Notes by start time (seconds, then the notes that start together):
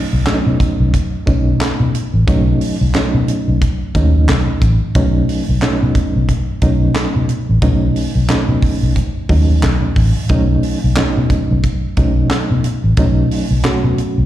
0.13 B1
0.26 F#3 A3 C#4 D4, muted fingered electric bass stroke, snare, clap, closed hi-hat
0.34 D#4
0.47 B2
0.60 kick, closed hi-hat
0.80 B1
0.94 kick, closed hi-hat
1.26 B1 F#3 A3 C#4 D#4, kick, closed hi-hat
1.61 snare, clap, closed hi-hat
1.80 B2
1.95 closed hi-hat
2.14 A1
2.27 B1 F#3 A3 C#4 D#4, kick, closed hi-hat
2.61 open hi-hat
2.81 B1
2.94 F#3 A3 C#4 D#4, muted fingered electric bass stroke, snare, clap, closed hi-hat
3.14 B2
3.28 closed hi-hat
3.48 B1
3.62 kick, closed hi-hat
3.95 D#2 F#3 A3 C#4 D#4, kick, closed hi-hat
4.28 B1, snare, clap, closed hi-hat
4.62 A1, kick, closed hi-hat
4.95 B1 F#3 A3 C#4 D#4, kick, closed hi-hat
5.29 open hi-hat
5.49 B1
5.62 F#3 A3 C#4 D#4, muted fingered electric bass stroke, snare, clap, closed hi-hat
5.83 B2
5.95 kick, closed hi-hat
6.16 B1
6.29 kick, closed hi-hat
6.61 B1 F#3 A3 C#4 D#4, kick, closed hi-hat
6.96 snare, clap, closed hi-hat
7.16 B2
7.29 closed hi-hat
7.49 A1
7.62 B1 F#3 A3 C#4 D#4, kick, closed hi-hat
7.96 open hi-hat
8.15 B1
8.28 F#3 A3 C#4 D#4, muted fingered electric bass stroke, snare, clap, closed hi-hat
8.48 B2
8.62 kick, open hi-hat
8.83 B1
8.96 kick, closed hi-hat
9.29 D#2 F#3 A3 C#4 D#4, kick, open hi-hat
9.63 B1, snare, clap, closed hi-hat
9.96 A1, kick, open hi-hat
10.29 B1 F#3 A3 C#4 D#4, kick, closed hi-hat
10.63 open hi-hat
10.84 B1
10.96 F#3 A3 C#4 D#4, snare, clap, closed hi-hat
11.17 B2
11.30 kick, closed hi-hat
11.51 B1
11.63 kick, closed hi-hat
11.97 B1 F#3 A3 C#4 D#4, kick, closed hi-hat
12.31 snare, clap, closed hi-hat
12.51 B2
12.64 closed hi-hat
12.84 A1
12.97 B1 F#3 A3 C#4 D#4, kick, closed hi-hat
13.31 open hi-hat
13.51 B1
13.64 F#3 A3 C#4 F#4, muted fingered electric bass stroke, snare, clap, closed hi-hat
13.84 B2
13.98 closed hi-hat
14.18 B1